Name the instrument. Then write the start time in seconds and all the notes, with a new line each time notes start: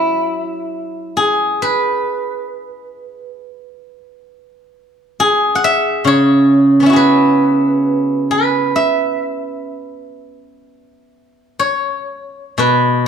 guzheng
Already playing: F#3 E4 F#4 G#4
1.17 G#4
1.62 B4
5.20 G#4
5.55 F#5
5.64 E5
6.05 C#3 C#5
6.80 B3 C#4
6.86 E4 F#4
6.93 G#4 B4
8.31 B4
8.76 E5
10.39 D#5
10.68 D5
10.96 C#5
11.59 C#5
12.58 B2 B4